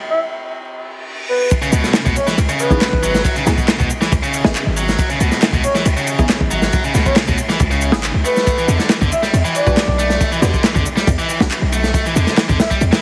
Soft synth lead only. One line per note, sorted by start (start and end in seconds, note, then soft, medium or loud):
0.10 0.20 E5 medium
1.29 1.51 B4 medium
2.16 2.27 C#5 medium
2.59 3.20 B4 loud
5.63 5.74 C#5 medium
7.06 7.16 C#5 medium
8.25 8.68 B4 loud
9.12 9.22 E5 medium
9.55 10.16 D5 loud
12.60 12.70 E5 medium